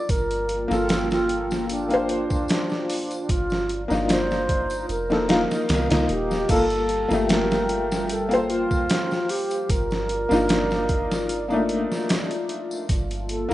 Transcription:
0.00 6.46 F4 medium
0.00 0.12 D5 loud
0.09 0.67 G1 medium
0.09 3.26 A#3 medium
0.09 0.71 A#4 loud
0.09 3.26 G5 medium
0.09 kick loud
0.09 closed hi-hat medium
0.09 tambourine medium
0.31 closed hi-hat soft
0.31 tambourine soft
0.49 closed hi-hat medium
0.68 2.27 G1 medium
0.68 1.84 A#3 medium
0.68 1.85 F4 medium
0.68 1.09 F4 loud
0.68 snare soft
0.68 tambourine medium
0.72 1.86 A4 loud
0.89 snare loud
0.89 closed hi-hat medium
0.89 tambourine medium
1.11 1.66 F4 loud
1.11 snare medium
1.11 tambourine soft
1.29 closed hi-hat medium
1.51 snare soft
1.51 tambourine medium
1.70 3.32 D4 medium
1.70 closed hi-hat medium
1.70 tambourine medium
1.89 3.26 A#3 medium
1.89 3.27 F4 medium
1.89 closed hi-hat soft
1.89 tambourine soft
1.94 3.28 C5 medium
2.09 closed hi-hat medium
2.30 kick medium
2.30 tambourine medium
2.48 snare loud
2.48 closed hi-hat medium
2.48 tambourine medium
2.70 snare soft
2.70 tambourine soft
2.90 open hi-hat medium
3.11 closed hi-hat soft
3.11 tambourine medium
3.29 3.87 G1 medium
3.29 3.84 F4 loud
3.29 4.88 D5 medium
3.29 6.46 A#5 medium
3.29 kick loud
3.29 closed hi-hat medium
3.29 tambourine medium
3.50 snare soft
3.50 tambourine soft
3.69 closed hi-hat medium
3.88 4.86 G1 medium
3.88 4.86 A#3 medium
3.88 4.87 D4 medium
3.88 4.87 D#4 medium
3.88 tambourine medium
3.92 4.88 F4 loud
3.92 snare soft
4.09 4.86 C5 loud
4.09 snare loud
4.09 closed hi-hat medium
4.09 tambourine medium
4.31 snare soft
4.31 tambourine soft
4.49 kick medium
4.49 closed hi-hat medium
4.70 closed hi-hat soft
4.70 tambourine medium
4.89 5.47 F1 medium
4.89 6.06 A#4 medium
4.89 6.48 D#5 medium
4.89 closed hi-hat medium
4.89 tambourine medium
5.10 5.25 A#3 medium
5.10 5.26 D#4 medium
5.10 5.26 A4 medium
5.10 snare soft
5.10 tambourine soft
5.28 5.85 A#3 medium
5.28 5.85 D#4 medium
5.28 5.86 F4 loud
5.28 snare loud
5.28 closed hi-hat medium
5.51 snare soft
5.51 tambourine medium
5.69 5.88 C2 loud
5.69 snare loud
5.69 closed hi-hat medium
5.69 tambourine medium
5.89 6.07 C2 loud
5.89 6.46 A#3 medium
5.89 6.47 D#4 medium
5.89 6.48 F4 medium
5.89 snare loud
5.89 closed hi-hat medium
5.89 tambourine soft
6.09 6.45 D#1 medium
6.09 6.52 G4 medium
6.09 closed hi-hat medium
6.31 snare soft
6.31 tambourine medium
6.48 7.07 G1 loud
6.48 9.66 G3 medium
6.48 7.02 A#3 loud
6.48 13.54 F4 medium
6.48 7.02 F4 medium
6.48 7.30 A4 loud
6.48 7.03 A4 loud
6.48 9.66 G5 loud
6.48 kick loud
6.48 closed hi-hat medium
6.48 crash medium
6.48 tambourine medium
6.70 closed hi-hat soft
6.70 tambourine soft
6.89 closed hi-hat medium
7.08 8.67 G1 medium
7.08 8.24 A#3 medium
7.08 8.26 F4 medium
7.08 snare soft
7.08 tambourine medium
7.13 8.27 A3 loud
7.29 8.06 A#4 loud
7.29 snare loud
7.29 closed hi-hat medium
7.29 tambourine medium
7.51 snare medium
7.51 tambourine soft
7.69 closed hi-hat medium
7.92 snare medium
7.92 tambourine medium
8.09 8.52 A4 loud
8.09 closed hi-hat medium
8.09 tambourine medium
8.29 9.66 A#3 medium
8.29 9.67 F4 medium
8.29 closed hi-hat soft
8.29 tambourine soft
8.33 9.68 C5 medium
8.50 9.32 F4 loud
8.50 closed hi-hat medium
8.71 kick loud
8.71 tambourine medium
8.89 snare loud
8.89 closed hi-hat medium
8.89 tambourine medium
9.11 snare soft
9.11 tambourine soft
9.29 9.72 G4 medium
9.29 open hi-hat medium
9.51 closed hi-hat soft
9.51 tambourine medium
9.69 10.27 G1 loud
9.69 12.10 A#4 loud
9.69 12.86 D5 medium
9.69 kick loud
9.69 closed hi-hat medium
9.69 tambourine medium
9.91 snare soft
9.91 tambourine soft
10.09 closed hi-hat medium
10.29 11.87 G1 medium
10.29 11.45 A#3 medium
10.29 11.45 D4 medium
10.29 11.46 D#4 medium
10.29 snare soft
10.29 tambourine medium
10.33 11.47 F4 loud
10.49 snare loud
10.49 closed hi-hat medium
10.49 tambourine medium
10.71 snare soft
10.71 tambourine soft
10.89 kick medium
10.89 closed hi-hat medium
11.11 snare medium
11.11 tambourine medium
11.29 closed hi-hat medium
11.29 tambourine medium
11.48 12.86 A#3 medium
11.48 12.87 D4 medium
11.48 12.88 D#4 medium
11.48 tambourine soft
11.53 12.88 A3 medium
11.69 closed hi-hat medium
11.92 snare soft
11.92 tambourine medium
12.09 snare loud
12.09 closed hi-hat medium
12.09 tambourine medium
12.31 closed hi-hat soft
12.31 tambourine soft
12.49 closed hi-hat medium
12.71 tambourine medium
12.89 13.47 G1 loud
12.89 13.54 A#3 medium
12.89 13.54 A5 medium
12.89 kick loud
12.89 closed hi-hat medium
12.89 tambourine medium
13.11 closed hi-hat soft
13.11 tambourine soft
13.29 13.54 A4 loud
13.29 closed hi-hat medium
13.49 13.54 A#3 loud

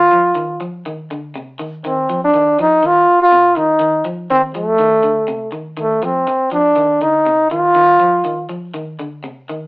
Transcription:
0.00 0.61 F4 loud
0.12 0.34 F3 medium
0.35 0.58 D#3 medium
0.61 0.83 F3 medium
0.86 1.08 D#3 medium
1.11 1.33 D3 medium
1.35 1.57 C3 medium
1.59 1.81 D#3 medium
1.85 2.06 D#3 medium
1.85 2.20 C4 medium
2.10 2.31 F3 medium
2.24 2.57 D4 medium
2.34 2.56 D#3 medium
2.59 2.81 F3 medium
2.59 2.88 D#4 loud
2.83 3.05 D#3 medium
2.83 3.21 F4 loud
3.22 3.59 F4 loud
3.32 3.54 C3 medium
3.56 3.78 D#3 medium
3.56 4.06 D#4 medium
3.80 4.02 D#3 medium
4.05 4.27 F3 medium
4.30 4.52 D#3 medium
4.30 4.41 C4 loud
4.55 4.77 F3 medium
4.55 5.49 A3 loud
4.79 5.01 D#3 medium
5.03 5.25 D3 medium
5.28 5.50 C3 medium
5.52 5.75 D#3 medium
5.77 5.99 D#3 medium
5.77 6.05 A3 medium
6.03 6.25 F3 medium
6.03 6.52 C4 medium
6.27 muted clean electric guitar stroke medium
6.52 6.74 F3 medium
6.52 7.03 D4 loud
6.76 6.98 D#3 medium
7.01 7.23 D3 medium
7.01 7.51 D#4 loud
7.26 7.48 C3 medium
7.51 7.73 D#3 medium
7.51 8.46 F4 loud
7.75 7.97 D#3 medium
8.00 8.22 F3 medium
8.25 8.47 D#3 medium
8.49 8.71 F3 medium
8.74 8.96 D#3 medium
8.99 9.21 D3 medium
9.24 9.46 C3 medium
9.49 9.67 D#3 medium

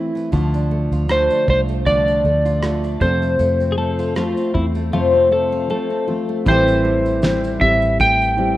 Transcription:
0.00 0.14 E3 medium
0.00 0.31 A3 soft
0.00 0.33 C4 soft
0.00 0.41 C4 soft
0.00 0.33 E4 medium
0.00 0.41 E4 medium
0.15 0.32 E3 medium
0.15 shaker soft
0.32 0.88 D2 medium
0.32 1.07 D3 medium
0.32 1.86 F3 medium
0.32 1.08 A3 medium
0.32 1.09 D4 medium
0.32 1.10 F4 medium
0.32 kick medium
0.32 shaker medium
0.54 1.29 D4 medium
0.54 shaker soft
0.71 1.09 A3 medium
0.92 1.27 D2 medium
0.92 1.48 F4 medium
0.92 shaker soft
1.08 1.47 D3 medium
1.08 1.48 A3 medium
1.08 1.69 A3 medium
1.08 1.48 D4 medium
1.08 1.46 F4 medium
1.08 1.49 C5 medium
1.08 cross-stick loud
1.08 shaker medium
1.30 2.07 D4 medium
1.30 shaker soft
1.48 2.21 C2 medium
1.48 1.86 A3 soft
1.48 1.86 D4 soft
1.48 2.45 F4 medium
1.48 1.60 C5 medium
1.48 kick loud
1.68 2.24 A3 soft
1.68 shaker soft
1.86 2.62 D3 medium
1.86 5.37 F3 medium
1.86 2.63 A3 medium
1.86 2.63 D4 medium
1.86 2.64 F4 medium
1.86 3.05 D5 medium
1.86 kick medium
1.86 shaker medium
2.08 2.83 D4 soft
2.08 shaker soft
2.24 2.97 D2 medium
2.24 2.62 A3 medium
2.24 shaker soft
2.45 3.99 F4 medium
2.45 shaker soft
2.63 3.01 D3 soft
2.63 3.01 A3 medium
2.63 3.02 D4 medium
2.63 3.01 F4 medium
2.63 cross-stick loud
2.63 shaker medium
2.84 3.10 D4 soft
2.84 shaker soft
3.01 3.37 F2 medium
3.01 4.17 F2 soft
3.01 4.17 C3 medium
3.01 4.15 F3 soft
3.01 3.22 A3 medium
3.01 4.16 A3 medium
3.01 4.17 C4 medium
3.01 4.17 F4 soft
3.01 6.04 C5 medium
3.01 kick medium
3.01 shaker soft
3.22 3.39 A3 soft
3.22 shaker soft
3.39 4.34 F2 medium
3.39 3.77 A3 medium
3.39 shaker medium
3.60 4.37 C4 medium
3.60 shaker soft
3.72 3.77 G#4 medium
3.78 4.16 A3 medium
3.78 4.16 A4 medium
3.99 4.55 F4 medium
3.99 shaker soft
4.15 4.55 F3 medium
4.15 4.75 A3 medium
4.15 4.55 A3 medium
4.15 4.54 C4 medium
4.15 4.54 F4 medium
4.15 4.56 F4 medium
4.15 cross-stick medium
4.15 shaker medium
4.37 5.13 C4 soft
4.37 shaker medium
4.54 4.90 E2 medium
4.54 4.93 A3 soft
4.54 4.93 C4 medium
4.54 4.65 E4 medium
4.54 kick medium
4.75 4.93 A3 medium
4.75 shaker soft
4.93 5.70 F2 medium
4.93 5.70 C3 medium
4.93 5.68 F3 medium
4.93 5.31 A3 medium
4.93 5.69 A3 medium
4.93 5.70 C4 medium
4.93 5.29 F4 medium
4.93 5.70 F4 medium
5.14 5.90 C4 soft
5.32 5.69 A3 medium
5.32 5.69 A4 medium
5.52 6.07 F4 medium
5.69 6.08 F3 medium
5.69 6.08 A3 medium
5.69 6.28 A3 medium
5.69 6.07 C4 medium
5.69 6.06 F4 medium
5.69 6.43 A4 medium
5.90 7.22 C4 soft
6.07 6.46 F3 soft
6.07 6.46 A3 soft
6.07 6.46 C4 soft
6.07 6.46 F4 medium
6.29 6.84 A3 medium
6.45 7.57 A1 medium
6.45 7.23 A2 medium
6.45 8.57 E3 medium
6.45 7.21 E3 medium
6.45 7.22 G3 medium
6.45 8.57 C4 medium
6.45 7.23 C4 medium
6.45 7.23 E4 medium
6.45 7.60 G4 medium
6.45 8.57 G4 medium
6.45 8.57 A4 medium
6.45 7.58 C5 loud
6.45 8.57 G5 medium
6.45 kick loud
6.45 shaker medium
6.68 shaker medium
6.85 7.99 A3 medium
7.06 shaker medium
7.22 7.61 E3 medium
7.22 7.61 G3 medium
7.22 8.37 C4 medium
7.22 7.60 C4 medium
7.22 7.59 E4 medium
7.22 snare loud
7.22 shaker medium
7.44 shaker medium
7.60 8.57 A1 medium
7.60 8.38 G3 soft
7.60 8.37 C4 soft
7.60 8.36 E4 medium
7.60 8.57 G4 medium
7.60 7.97 E5 medium
7.60 kick loud
7.82 shaker medium
8.00 8.57 A3 medium
8.00 8.57 G5 loud
8.00 kick medium
8.00 shaker medium
8.21 shaker soft
8.37 8.57 G3 soft
8.37 8.57 C4 medium
8.37 8.57 E4 medium

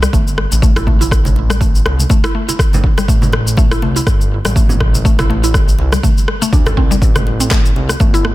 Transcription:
0.02 0.08 G3 medium
0.02 cross-stick medium
0.02 shaker medium
0.13 0.45 G1 medium
0.13 0.26 A3 loud
0.13 kick loud
0.13 muted conga soft
0.13 shaker medium
0.27 shaker soft
0.38 cross-stick medium
0.52 1.80 A1 medium
0.52 muted conga medium
0.52 shaker medium
0.62 0.75 A3 loud
0.62 kick loud
0.62 high conga medium
0.62 shaker medium
0.76 0.86 E4 loud
0.76 cross-stick medium
0.76 muted conga soft
0.76 low conga medium
0.76 shaker soft
0.87 1.00 A3 medium
0.87 kick medium
0.87 high conga medium
1.01 1.11 E4 medium
1.01 muted conga medium
1.01 shaker medium
1.11 kick loud
1.11 cross-stick medium
1.11 shaker medium
1.25 high conga loud
1.25 shaker soft
1.36 muted conga soft
1.50 1.56 G3 medium
1.50 cross-stick loud
1.50 shaker medium
1.61 1.73 A3 loud
1.61 kick loud
1.61 muted conga soft
1.61 shaker medium
1.75 shaker soft
1.85 2.04 C2 medium
1.85 cross-stick medium
1.85 muted conga medium
1.99 high conga medium
1.99 shaker medium
2.10 2.23 A3 loud
2.10 kick loud
2.10 muted conga soft
2.10 high conga medium
2.10 shaker medium
2.24 2.34 E4 loud
2.24 cross-stick loud
2.24 shaker soft
2.35 2.47 A3 medium
2.49 2.58 E4 medium
2.49 muted conga medium
2.49 shaker medium
2.59 kick loud
2.59 cross-stick medium
2.59 shaker medium
2.73 muted conga soft
2.73 high conga medium
2.73 low conga loud
2.73 shaker soft
2.84 kick medium
2.98 3.03 G3 medium
2.98 cross-stick medium
2.98 muted conga medium
2.98 shaker medium
3.08 3.77 A1 loud
3.08 3.21 A3 loud
3.08 kick loud
3.08 shaker medium
3.22 high conga loud
3.22 shaker soft
3.33 cross-stick medium
3.33 muted conga soft
3.47 shaker medium
3.57 3.70 A3 loud
3.57 kick loud
3.57 muted conga soft
3.57 shaker medium
3.71 3.81 E4 loud
3.71 cross-stick loud
3.71 shaker soft
3.82 4.00 C2 medium
3.82 3.95 A3 medium
3.82 muted conga medium
3.96 4.06 E4 medium
3.96 shaker medium
4.07 4.39 G1 medium
4.07 kick loud
4.07 cross-stick medium
4.07 muted conga soft
4.07 shaker medium
4.21 shaker soft
4.45 5.74 A1 medium
4.45 4.51 G3 medium
4.45 cross-stick medium
4.45 muted conga soft
4.45 shaker medium
4.56 4.68 A3 loud
4.56 kick loud
4.56 high conga medium
4.56 shaker medium
4.69 muted conga soft
4.69 low conga medium
4.69 shaker soft
4.80 kick medium
4.80 cross-stick medium
4.80 high conga medium
4.95 muted conga medium
4.95 shaker medium
5.05 5.18 A3 loud
5.05 kick loud
5.05 shaker medium
5.19 5.29 E4 loud
5.19 cross-stick medium
5.19 high conga loud
5.19 shaker soft
5.30 5.42 A3 medium
5.30 muted conga soft
5.44 5.53 E4 medium
5.44 shaker medium
5.54 kick loud
5.54 cross-stick medium
5.54 muted conga soft
5.54 shaker medium
5.68 shaker soft
5.79 5.97 C2 medium
5.79 muted conga soft
5.92 5.98 G3 medium
5.92 cross-stick medium
5.92 high conga medium
5.92 shaker medium
6.03 6.16 A3 loud
6.03 kick loud
6.03 muted conga soft
6.03 high conga medium
6.03 shaker medium
6.18 shaker soft
6.28 cross-stick medium
6.42 6.52 A3 loud
6.42 muted conga medium
6.42 shaker medium
6.53 6.79 D2 medium
6.53 6.60 D4 medium
6.53 kick loud
6.53 shaker medium
6.66 6.77 A4 medium
6.66 cross-stick medium
6.66 muted conga soft
6.66 high conga medium
6.66 low conga loud
6.66 shaker soft
6.77 6.96 C2 medium
6.77 6.85 C4 loud
6.77 kick medium
6.91 6.97 G3 medium
6.91 muted conga soft
6.91 shaker medium
7.02 7.71 A1 loud
7.02 kick loud
7.02 shaker medium
7.16 cross-stick medium
7.16 high conga loud
7.16 shaker soft
7.27 muted conga soft
7.40 7.50 C4 medium
7.40 shaker medium
7.51 7.63 A3 loud
7.51 kick loud
7.51 cross-stick medium
7.51 clap medium
7.51 muted conga soft
7.51 shaker medium
7.65 shaker soft
7.76 7.94 C2 medium
7.76 muted conga soft
7.89 cross-stick medium
7.89 shaker medium
8.00 8.32 G1 loud
8.00 8.13 A3 loud
8.00 kick loud
8.00 muted conga soft
8.00 shaker medium
8.14 8.24 E4 loud
8.14 shaker soft
8.25 8.35 A3 medium
8.25 cross-stick medium

